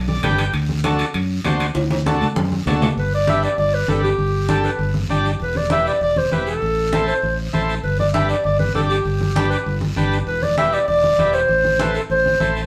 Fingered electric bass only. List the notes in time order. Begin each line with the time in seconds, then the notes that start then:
Already playing: B1
0.23 G1
0.53 D2
1.14 F#2
1.45 D2
1.75 D2
2.36 F#2
2.66 D2
2.96 G1
3.58 G1
3.88 G1
4.18 G1
4.79 G1
5.09 G1
5.40 E1
6.01 E1
6.31 E1
6.62 A1
7.23 A1
7.53 A1
7.83 G1
8.45 G1
8.75 G1
9.05 G1
9.66 G1
9.97 G1
10.27 E1
10.88 E1
11.18 E1
11.49 A1
12.10 A1
12.40 A1